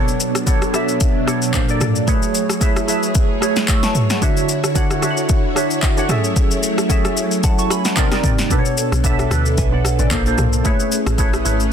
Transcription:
Already playing: B2 F#3 B3 D4 A4 C#5
0.08 shaker
0.20 shaker
0.35 cross-stick, shaker
0.46 B2 B3 D4 A4 C#5, kick, shaker
0.62 cross-stick, shaker
0.73 B2 B3 D4 A4 E5, cross-stick, shaker
0.89 shaker
1.01 kick, shaker
1.26 B2 B3 D4 A4 C#5, cross-stick, shaker
1.42 shaker
1.53 A#2 A#3 D4 A4 C5, kick, clap, shaker
1.68 A#2 A#3 D4 A4 D5, shaker
1.81 cross-stick, mid tom, shaker
1.96 shaker
2.07 A3 E4 G#4 B4 C#5, kick, shaker
2.23 shaker
2.35 shaker
2.50 cross-stick, shaker
2.60 A3 E4 G#4 B4 E5, kick, shaker
2.76 cross-stick, shaker
2.87 A3 E4 G#4 B4 E5, shaker
3.03 shaker
3.15 kick, shaker
3.41 A3 E4 G#4 B4 C#5, cross-stick, shaker
3.56 snare, shaker
3.68 C#6 E6, kick, clap, shaker
3.83 A5 C#6, snare, shaker
3.95 mid tom, shaker
4.10 F#5 A5, snare, shaker
4.21 D3 D4 E4 F#4 C#5 E5, kick, shaker
4.37 shaker
4.49 shaker
4.64 cross-stick, shaker
4.75 D3 D4 F#4 C#5 F#5, kick, shaker
4.91 cross-stick, shaker
5.01 D3 D4 F#4 C#5 E5, cross-stick, shaker
5.10 F#5
5.17 shaker
5.29 kick, shaker
5.55 D3 D4 F#4 C#5 E5, cross-stick, shaker
5.70 shaker
5.83 kick, clap, shaker
5.97 D3 D4 F#4 C#5 F#5, shaker
6.09 F#3 A3 C#4 G#4 A4 E5, cross-stick, mid tom, shaker
6.24 shaker
6.36 kick, shaker
6.51 shaker
6.63 shaker
6.78 cross-stick, shaker
6.89 F#3 C#4 G#4 A4 E5, kick, shaker
7.05 cross-stick, shaker
7.17 shaker
7.31 shaker
7.43 F#5 A5, kick, shaker
7.59 A5 C#6, shaker
7.70 G#5 B5, cross-stick, shaker
7.85 F#5 A5, snare, shaker
7.96 C3 G3 A#3 C4 D#4 A#4 D5, kick, clap, shaker
8.11 C3 C4 D#4 A#4 D5, cross-stick, snare, shaker
8.24 kick, mid tom, shaker
8.38 snare, shaker
8.50 B2 B3 D4 A4 B4, kick, shaker
8.59 C#5
8.65 shaker
8.77 shaker
8.92 B1, cross-stick, shaker
9.03 B2 B3 D4 A4 E5, kick, shaker
9.19 cross-stick, shaker
9.30 D2 B2 B3 D4 A4 B4, cross-stick, shaker
9.46 shaker
9.58 B1 E5 G#5, kick, shaker
9.72 B1 D5 F#5
9.85 cross-stick, shaker
9.99 A1 B4 D5, shaker
10.10 A#1 A#2 A#3 D4 A4 C5, kick, clap, shaker
10.25 A#2 A#3 D4 A4 C5, shaker
10.38 B1, cross-stick, mid tom, shaker
10.53 shaker
10.64 A3 C#4 E4 G#4 B4 C#5, kick, shaker
10.80 shaker
10.92 shaker
11.06 A1, cross-stick, shaker
11.18 A3 E4 G#4 B4 C#5, kick, shaker
11.33 cross-stick, shaker
11.44 G#1 A3 E4 G#4 B4 C#5, shaker
11.60 shaker

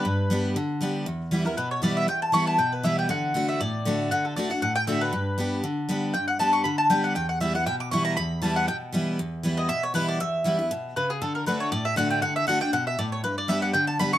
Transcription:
Already playing: B4
0.05 G2
0.30 G3 B3 D4 G4
0.56 D3
0.81 G3 B3 D4 G4
1.06 E2
1.31 E3 G3 B3 E4
1.45 B3 E4 A#4
1.57 B2 B4
1.71 C#5
1.82 E3 G3 B3 E4 D5
1.97 E5
2.08 E2 G5
2.22 A5
2.32 E3 G3 B3 E4 C#6
2.47 A5
2.58 B2 G5
2.72 B4
2.83 E3 G3 B3 E4 E5
2.99 G5
3.09 D3 F#5
3.34 D3 A3 D4 F#4
3.49 E5
3.60 A2 D5
3.85 D3 A3 D4 F#4
4.11 D3 F#5
4.25 A4
4.36 D3 A3 D4 F#4 D5
4.50 D4 F#4 F#5
4.62 A2 F#5
4.75 G5
4.87 D3 A3 D4 F#4 E5
5.01 B4
5.13 G2
5.38 G3 B3 D4 G4
5.64 D3
5.89 G3 B3 D4 G4
6.14 G2 G5
6.28 F#5
6.39 G3 B3 D4 G4 A5
6.53 C#6
6.64 D3 B5
6.78 A5
6.90 G3 B3 D4 G4 G5
7.04 F#5
7.15 E2 G5
7.29 F#5
7.40 E3 G3 B3 E4 E5
7.55 B3 E4 F#5
7.66 B2 G5
7.80 D6
7.91 E3 G3 B3 E4 C#6
8.05 A#5
8.17 E2 B5
8.42 E3 G3 B3 E4 A5
8.56 F#5
8.68 B2 G5
8.92 E3 G3 B3 E4
9.19 E2
9.43 E3 G3 B3 E4
9.57 D#5
9.69 B2 E5
9.83 C#5
9.94 E3 G3 B3 E4 B4
10.08 D5
10.20 E2 E5
10.44 E3 G3 B3 E4
10.59 B3 E4
10.71 B2
10.96 C#3 B4
11.10 G#4
11.22 D3 A4
11.35 A#4
11.46 D3 A3 D4 F#4 B4
11.60 C#5
11.72 A2 D5
11.85 E5
11.96 D3 A3 D4 F#4 F#5
12.10 G5
12.22 D3 F#5
12.36 E5
12.47 D3 A3 D4 F#4 F#5
12.60 D4 F#4 G5
12.73 B2 F#5
12.87 E5
12.99 A2 D5
13.12 C#5
13.24 G2 B4
13.38 D5
13.48 G3 B3 D4 G4 E5
13.62 F#5
13.73 D3 G5
13.87 A5
13.99 G3 B3 D4 G4 B5
14.13 G4 C#6

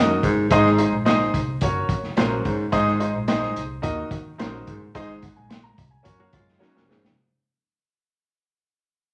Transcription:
Already playing: F#2 D#3 D#4 F#4 A#4 D#5
0.22 G1 G#2, kick, closed hi-hat
0.50 G#1 G#2 D#4 G#4 C5 D#5, kick, closed hi-hat
0.65 snare
0.78 D#4 G#4 C5 D#5, closed hi-hat
0.92 A#1
1.05 D#4 G#4 C5 D#5, snare, closed hi-hat
1.20 snare
1.34 C2, kick, closed hi-hat
1.61 F#1 C#4 F#4 A#4 C#5, kick, closed hi-hat
1.89 F#1, kick, closed hi-hat
2.03 snare
2.17 A#1 F#2 C#4 F#4 A#4 C5 F#5, snare, closed hi-hat
2.44 G1 G#2, kick, closed hi-hat
2.72 G#1 G#2 D#4 G#4 C5 D#5, kick, closed hi-hat
2.87 snare
2.99 D#4 G#4 C5 D#5, closed hi-hat
3.15 A#1
3.28 D#4 G#4 C5 D#5, snare, closed hi-hat
3.42 snare
3.56 C2, closed hi-hat
3.82 D#2 D#3 D#4 F#4 A#4 D#5, kick, closed hi-hat
4.11 D#2, kick, closed hi-hat
4.38 A#1 F#2 D#4 F#4 A#4 C5, snare, closed hi-hat
4.67 G1 G#2, kick, closed hi-hat
4.95 G#1 G#2 D#4 G#4 C5 D#5, kick, closed hi-hat
5.22 F#5, kick, closed hi-hat
5.36 A#1 G#5
5.50 C6, snare, closed hi-hat
5.64 A#5
5.78 C2, kick, closed hi-hat
5.91 G#5
6.03 F#2 C#4 F#4 A#4 C#5, kick, closed hi-hat
6.20 A#3 F#4
6.33 F#2 G#3 F4, kick, closed hi-hat
6.48 snare
6.59 F#2 F#3 C#4 D#4 F#4 A#4 C#5, snare
6.75 F#1 F3 C#4, snare
6.88 E1 G#2, snare
7.05 F1, snare

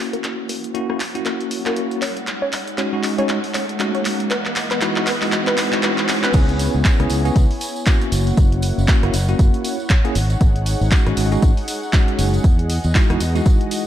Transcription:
Already playing: A#3 C#4 E4 F#4, riser
0.00 A#3 E4 C#5 F#5
0.13 A#4, closed hi-hat
0.24 clap, closed hi-hat
0.49 A#4, open hi-hat
0.64 closed hi-hat
0.74 A#3 C#4 E4 F#4, closed hi-hat
0.89 A#3 C#4 E4 F#4 A#4, cross-stick
1.00 clap, open hi-hat
1.15 A#3 C#4 E4 F#4, closed hi-hat
1.25 A#4, clap, closed hi-hat
1.41 closed hi-hat
1.51 open hi-hat
1.66 A#3 C#4 E4 F#4 A#4, clap, closed hi-hat
1.76 closed hi-hat
1.91 closed hi-hat
2.02 G#3 D#4 C#5, clap, open hi-hat
2.17 closed hi-hat
2.27 clap, closed hi-hat
2.42 C#5
2.53 clap, open hi-hat
2.68 closed hi-hat
2.78 G#3 C#4 D#4 F#4 C#5, clap, closed hi-hat
2.93 G#3 C#4 D#4 F#4
3.03 clap, open hi-hat
3.18 G#3 C#4 D#4 F#4 C#5, closed hi-hat
3.29 clap, closed hi-hat
3.44 open hi-hat
3.54 C#5, clap, open hi-hat
3.69 closed hi-hat
3.80 G#3 C#4 D#4 F#4, clap, closed hi-hat
3.95 C#5, closed hi-hat
4.05 clap, open hi-hat
4.20 closed hi-hat
4.31 E3 B4 D#5, clap, closed hi-hat
4.46 clap
4.56 clap, open hi-hat
4.71 B4, clap, closed hi-hat
4.81 G#3 D#4 E4 F#4, clap, closed hi-hat
4.96 G#3 D#4 E4 F#4, clap
5.07 B4, clap, open hi-hat
5.22 G#3 D#4 E4 F#4, clap, open hi-hat
5.32 clap, closed hi-hat
5.47 B4, clap, closed hi-hat
5.58 clap, open hi-hat
5.72 G#3 D#4 E4 F#4, clap, closed hi-hat
5.83 B4, clap, closed hi-hat
5.98 clap, closed hi-hat
6.09 clap, open hi-hat
6.23 B4, clap, closed hi-hat
6.33 C#2 B3 C#4 E4 G#4 C#5 G#5, kick, closed hi-hat, crash, tambourine
6.49 closed hi-hat
6.59 open hi-hat, tambourine
6.74 C#2, tambourine
6.85 B3 C#4 E4 G#4, kick, clap, closed hi-hat, tambourine
6.99 C#2 B3 C#4 E4 G#4, cross-stick, closed hi-hat
7.10 C#2, open hi-hat, tambourine
7.25 B3 C#4 E4 G#4, closed hi-hat, tambourine
7.36 C#2, kick, closed hi-hat, tambourine
7.51 open hi-hat
7.61 open hi-hat, tambourine
7.76 tambourine
7.86 A#3 C#4 E4 F#4, kick, clap, closed hi-hat, tambourine
8.01 closed hi-hat
8.12 F#1 A#3 E4 C#5 F#5, open hi-hat, tambourine
8.27 closed hi-hat, tambourine
8.37 F#1, kick, closed hi-hat, tambourine
8.52 closed hi-hat
8.62 open hi-hat, tambourine
8.78 F#1, tambourine
8.88 A#3 C#4 E4 F#4, kick, clap, closed hi-hat, tambourine
9.03 F#1 A#3 C#4 E4 F#4, cross-stick, closed hi-hat
9.13 F#1, open hi-hat, tambourine
9.28 A#3 C#4 E4 F#4, closed hi-hat, tambourine
9.39 F#1, kick, closed hi-hat, tambourine
9.54 closed hi-hat
9.64 open hi-hat, tambourine
9.80 tambourine
9.89 kick, clap, closed hi-hat, tambourine
10.05 A#3 C#4 E4 G#4, closed hi-hat
10.15 G#1 D#4 G#4, open hi-hat, tambourine
10.30 closed hi-hat, tambourine
10.41 G#1, kick, closed hi-hat, tambourine
10.56 closed hi-hat
10.66 open hi-hat, tambourine
10.81 G#1, tambourine
10.91 G#3 C#4 D#4 F#4, kick, clap, closed hi-hat, tambourine
11.06 G#1 G#3 C#4 D#4 F#4, cross-stick, closed hi-hat
11.17 G#1, open hi-hat, tambourine
11.32 G#3 C#4 D#4 F#4, closed hi-hat, tambourine
11.42 G#1, kick, closed hi-hat, tambourine
11.57 open hi-hat
11.68 open hi-hat, tambourine
11.83 tambourine
11.93 G#3 C#4 D#4 F#4, kick, clap, closed hi-hat, tambourine
12.08 closed hi-hat
12.19 F#1, open hi-hat, tambourine
12.34 closed hi-hat, tambourine
12.44 E2 E3 D#5, kick, closed hi-hat, tambourine
12.59 closed hi-hat
12.70 open hi-hat, tambourine
12.84 E2, closed hi-hat, tambourine
12.95 G#3 D#4 E4 F#4, kick, clap, closed hi-hat, tambourine
13.10 E2 G#3 D#4 E4 F#4, cross-stick, closed hi-hat
13.20 E2, open hi-hat, tambourine
13.35 G#3 D#4 E4 F#4, closed hi-hat, tambourine
13.46 kick, closed hi-hat, tambourine
13.61 closed hi-hat
13.71 open hi-hat, tambourine

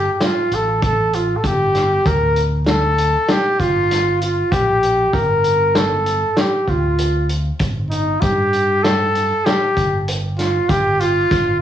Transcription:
Already playing: G4
0.13 G4
0.20 F4, snare, closed hi-hat
0.51 A1 A4, closed hi-hat
0.82 A4, kick, closed hi-hat
1.13 F4, closed hi-hat
1.36 A4
1.43 G1 G4, kick, closed hi-hat
1.74 snare, closed hi-hat
2.05 D2 A#4, kick, closed hi-hat
2.36 closed hi-hat
2.66 A4, snare, closed hi-hat
2.98 closed hi-hat
3.29 G4, snare, closed hi-hat
3.60 G1 F4, kick, closed hi-hat
3.91 snare, closed hi-hat
4.21 F4, closed hi-hat
4.52 A#1 G4, kick, closed hi-hat
4.83 closed hi-hat
5.13 G1 A#4, kick, closed hi-hat
5.44 closed hi-hat
5.75 A4, snare, closed hi-hat
6.06 closed hi-hat
6.37 G4, snare, closed hi-hat
6.68 D2 F4, kick, closed hi-hat
6.98 closed hi-hat
7.29 closed hi-hat
7.59 G1, kick, closed hi-hat
7.90 D#4, closed hi-hat
8.21 G2 G4, kick, closed hi-hat
8.53 closed hi-hat
8.83 A4, snare, closed hi-hat
9.15 closed hi-hat
9.45 G4, snare, closed hi-hat
9.77 G1, kick, closed hi-hat
10.08 closed hi-hat
10.38 F4, snare, closed hi-hat
10.69 G1 G4, kick, closed hi-hat
11.00 F4, closed hi-hat
11.31 G1, kick, snare, closed hi-hat

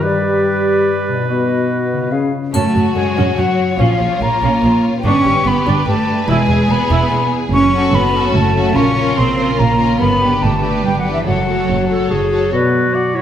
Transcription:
Already playing: G2 D4 G4
0.00 G3 G4 B4 D5
1.09 B2
1.13 D#4
1.18 F#4
1.22 B4
1.26 B3 F#4 D#5
1.93 C#3
1.98 C#4
2.02 F4
2.07 B4
2.11 C#4 G#4 F5
2.53 F#2 A3 C#4 F#4 C#5 A5, triangle
2.74 F#2 F#3 F#4
2.95 F#2 G#3 A3 C#5 G#5
3.17 F#2 C#4 F#4
3.37 F#2 F#3 C#5 F#5
3.59 C#4
3.78 A#1 A#2 F3 C#4 F4 F5
4.00 A#1 F3 F4
4.21 A#1 A#3 C#5 A#5
4.42 A#1 C#4 F4
4.63 A#1 F3 C#5
4.85 C#4
5.04 G1 G2 C#4 D4 G4 B4 C#6
5.25 G1 G3 G4
5.46 G1 B3 B4 B5
5.66 G1 D4 G4
5.87 G1 G3 A3 B4 A5
6.09 D4
6.28 E1 E2 G#3 E4 G#4 G#5
6.49 E1 G#3 G#4
6.69 E1 B3 B4 B5
6.90 E1 E4 G#4
7.11 E1 G#3 B4
7.32 E4
7.52 F#1 F#2 C#4 C#6
7.72 C#4 F#4 A4
7.92 F#1 B3 A4 B5
8.13 C#4 F#4 A4
8.34 F#1 A3 A4 A5
8.54 C#3 C#4 F#4 A4
8.75 A#1 A#2 C#4 F4 A#4 C#6
8.95 C#4 F4 A#4
9.17 A#1 C4 A#4 C6
9.36 C#4 F4 A#4
9.58 A#1 A#3 A#4 A#5
9.79 C#4 F4 A#4
9.99 G1 G2 B3 B5
10.20 D4 G4 B4
10.41 G1 A3 B4 A5
10.61 D4 G4 B4
10.84 G1 G3 B4 G5
10.97 F#3 F#5
11.04 D4 G4 B4
11.11 E3 E5
11.26 F#1 F#2 F#3 F#4 A4 C#5 F#5
11.46 A3 F#4 A4 C#5
11.68 F#1 C#5
11.89 F#4 A4 C#5
12.10 F#1 G#4 C#5
12.31 F#4 A4 C#5
12.52 B2 B3 F#4 B4 D5
12.73 F#3
12.94 F#4 D5 F#5
13.14 E4 B4 C#5

